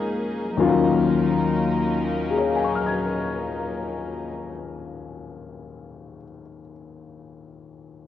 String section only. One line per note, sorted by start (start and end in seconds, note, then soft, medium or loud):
0.00 0.54 G#3 medium
0.00 0.52 A#3 medium
0.00 0.54 C#4 medium
0.00 0.53 D#4 medium
0.00 0.54 G#4 medium
0.58 4.43 F#3 medium
0.58 4.43 A#3 medium
0.58 4.44 C#4 medium
0.58 4.42 D#4 medium
0.58 4.44 A#4 medium